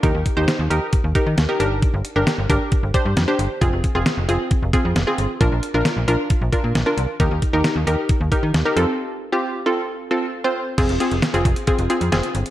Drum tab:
CC |----------------|----------------|----------------|----------------|
HH |x-x-x-x-x-x-x-x-|x-x-x-x-x-x-x-x-|x-x-x-x-x-x-x-x-|x-x-x-x-x-x-x-x-|
SD |----o-------o---|----o-------o---|----o-------o---|----o-------o---|
BD |o-o-----o-o-----|o-----o-o-o-----|o-o-----o-o-----|o-------o-o-----|

CC |----------------|----------------|x---------------|
HH |x-x-x-x-x-x-x-x-|----------------|xxxxxxxxxxxxxxxx|
SD |----o-------o---|----------------|----o-------o---|
BD |o-o-----o-o-----|----------------|o-----o-o-------|